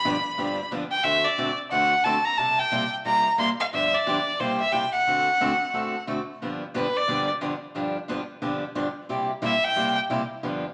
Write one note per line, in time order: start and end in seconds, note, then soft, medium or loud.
0.00 0.67 B5 loud
0.05 0.16 G2 medium
0.05 0.16 D3 medium
0.05 0.16 F3 medium
0.05 0.16 B3 medium
0.05 0.16 D4 medium
0.05 0.16 G4 medium
0.38 0.59 G2 medium
0.38 0.59 D3 medium
0.38 0.59 F3 medium
0.38 0.59 B3 medium
0.38 0.59 D4 medium
0.38 0.59 G4 medium
0.71 0.82 G2 medium
0.71 0.83 D3 medium
0.71 0.83 F3 medium
0.71 0.83 B3 medium
0.71 0.83 D4 medium
0.71 0.83 G4 medium
0.91 1.05 G5 medium
1.03 1.25 D3 medium
1.03 1.25 A3 medium
1.03 1.25 C4 medium
1.03 1.26 F#4 medium
1.03 1.26 A4 medium
1.03 1.26 E5 loud
1.24 1.58 D5 medium
1.38 1.49 D3 medium
1.38 1.49 A3 medium
1.38 1.49 C4 medium
1.38 1.50 F#4 medium
1.38 1.50 A4 medium
1.71 1.93 D3 medium
1.71 1.93 A3 medium
1.71 1.93 C4 medium
1.71 1.93 F#4 medium
1.71 1.93 A4 medium
1.71 2.05 F#5 medium
2.04 2.16 D3 medium
2.04 2.16 A3 medium
2.04 2.17 C4 medium
2.04 2.17 F#4 medium
2.04 2.17 A4 medium
2.04 2.26 A5 medium
2.25 2.39 A#5 medium
2.37 2.59 C3 medium
2.37 2.60 G3 medium
2.37 2.60 A#3 medium
2.37 2.60 E4 medium
2.37 2.60 G4 medium
2.37 2.60 A5 medium
2.59 2.93 G5 medium
2.72 2.83 C3 medium
2.72 2.83 G3 medium
2.72 2.83 A#3 medium
2.72 2.83 E4 medium
2.72 2.84 G4 medium
3.05 3.26 C3 medium
3.05 3.26 G3 medium
3.05 3.27 A#3 medium
3.05 3.27 E4 medium
3.05 3.27 G4 medium
3.05 3.37 A#5 medium
3.38 3.50 C3 medium
3.38 3.50 G3 medium
3.38 3.50 A#3 medium
3.38 3.50 E4 medium
3.38 3.50 G4 medium
3.38 3.49 C6 loud
3.60 3.66 F5 medium
3.73 3.94 G2 medium
3.73 3.94 D3 medium
3.73 3.94 F3 medium
3.73 3.94 B3 medium
3.73 3.94 D4 medium
3.73 3.94 G4 medium
3.73 3.96 E5 medium
3.94 4.41 D5 medium
4.06 4.17 G2 medium
4.06 4.18 D3 medium
4.06 4.18 F3 medium
4.06 4.18 B3 medium
4.06 4.18 D4 medium
4.06 4.18 G4 medium
4.40 4.61 C3 medium
4.40 4.61 G3 medium
4.40 4.61 A#3 medium
4.40 4.61 E4 medium
4.40 4.61 G4 medium
4.40 4.59 C5 medium
4.60 4.74 E5 medium
4.72 4.84 C3 medium
4.72 4.84 G3 medium
4.72 4.84 A#3 medium
4.72 4.84 E4 medium
4.72 4.84 G4 medium
4.72 4.92 G5 medium
4.92 6.02 F#5 medium
5.07 5.28 D3 medium
5.07 5.28 A3 medium
5.07 5.28 C4 medium
5.07 5.28 F#4 medium
5.07 5.28 A4 medium
5.41 5.51 D3 medium
5.41 5.52 A3 medium
5.41 5.52 C4 medium
5.41 5.52 F#4 medium
5.41 5.52 A4 medium
5.73 5.94 D3 medium
5.73 5.95 A3 medium
5.73 5.95 C4 medium
5.73 5.95 F#4 medium
5.73 5.95 A4 medium
6.07 6.18 D3 medium
6.07 6.18 A3 medium
6.07 6.19 C4 medium
6.07 6.19 F#4 medium
6.07 6.19 A4 medium
6.42 6.62 G2 medium
6.42 6.62 D3 medium
6.42 6.62 F3 medium
6.42 6.63 B3 medium
6.42 6.62 D4 medium
6.42 6.63 G4 medium
6.74 6.85 G2 medium
6.74 6.86 D3 medium
6.74 6.85 F3 medium
6.74 6.86 B3 medium
6.74 6.86 D4 medium
6.74 6.86 G4 loud
6.74 6.98 B4 medium
6.96 7.29 D5 medium
7.08 7.29 G2 medium
7.08 7.29 D3 medium
7.08 7.29 F3 medium
7.08 7.29 B3 medium
7.08 7.29 D4 medium
7.08 7.29 G4 medium
7.41 7.52 G2 medium
7.41 7.52 D3 medium
7.41 7.52 F3 medium
7.41 7.52 B3 medium
7.41 7.53 D4 medium
7.41 7.53 G4 medium
7.75 7.96 G2 medium
7.75 7.96 D3 medium
7.75 7.96 F3 medium
7.75 7.96 B3 medium
7.75 7.96 D4 medium
7.75 7.96 G4 medium
8.08 8.19 G2 medium
8.08 8.20 D3 medium
8.08 8.20 F3 medium
8.08 8.20 B3 medium
8.08 8.20 D4 medium
8.08 8.20 G4 medium
8.42 8.63 G2 medium
8.42 8.63 D3 medium
8.42 8.63 F3 medium
8.42 8.63 B3 medium
8.42 8.63 D4 medium
8.42 8.63 G4 medium
8.75 8.86 G2 medium
8.75 8.86 D3 medium
8.75 8.87 F3 medium
8.75 8.86 B3 medium
8.75 8.86 D4 medium
8.75 8.87 G4 medium
9.09 9.30 C3 medium
9.09 9.30 G3 medium
9.09 9.30 A#3 medium
9.09 9.30 E4 medium
9.09 9.30 G4 medium
9.42 9.53 C3 medium
9.42 9.53 G3 medium
9.42 9.54 A#3 medium
9.42 9.53 E4 medium
9.42 9.54 G4 medium
9.42 9.66 E5 medium
9.64 9.97 G5 loud
9.76 9.97 C3 medium
9.76 9.97 G3 medium
9.76 9.97 A#3 medium
9.76 9.97 E4 medium
9.76 9.97 G4 medium
10.10 10.21 C3 medium
10.10 10.21 G3 medium
10.10 10.21 A#3 medium
10.10 10.21 E4 medium
10.10 10.21 G4 medium
10.43 10.64 G2 medium
10.43 10.64 D3 medium
10.43 10.64 F3 medium
10.43 10.64 B3 medium
10.43 10.64 D4 medium
10.43 10.64 G4 medium